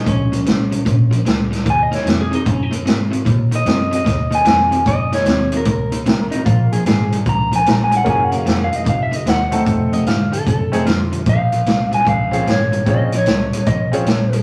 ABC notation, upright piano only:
X:1
M:4/4
L:1/8
Q:"Swing" 1/4=150
K:Bbm
V:1 name="Upright piano"
z8 | z8 | z8 | z8 |
z8 | [B,DFA]3 z4 [=A,CE=A]- | [=A,CE=A]2 z3 [A,CE^G] z2 | z4 z [CDFA] z2 |
[CDFA] z4 [CDFA] z2 |]